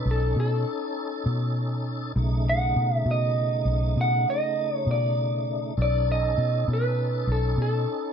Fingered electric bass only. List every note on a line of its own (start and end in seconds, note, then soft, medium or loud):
0.06 0.33 B1 medium
0.36 0.64 B2 medium
1.26 2.12 B2 medium
2.16 2.72 B1 loud
2.76 3.04 B2 medium
3.06 3.62 B2 loud
3.65 3.93 B1 medium
3.97 4.24 B2 medium
4.87 5.73 B2 medium
5.78 6.34 B1 medium
6.38 6.65 B2 medium
6.68 7.24 B2 medium
7.27 7.55 B1 medium
7.57 7.85 B2 medium